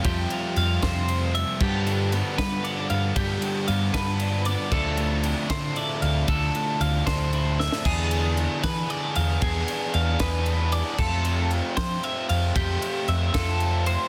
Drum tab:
CC |------------|x-----------|------------|x-----------|
RD |x-x-x-x-x-x-|--x-x-x-x-x-|x-x-x-x-x-x-|--x-x-x-x-x-|
SD |------o-----|------o-----|------o-----|------o-----|
BD |o-----o-----|o-----o-----|o-----o-----|o-----o-----|

CC |------------|x-----------|------------|x-----------|
RD |x-x-x-x-x---|--x-x-x-x-x-|x-x-x-x-x-x-|--x-x-x-x-x-|
SD |------o---oo|------o-----|------o-----|------o-----|
BD |o-----o-----|o-----o-----|o-----o-----|o-----o-----|

CC |------------|
RD |x-x-x-x-x-x-|
SD |------o-----|
BD |o-----o-----|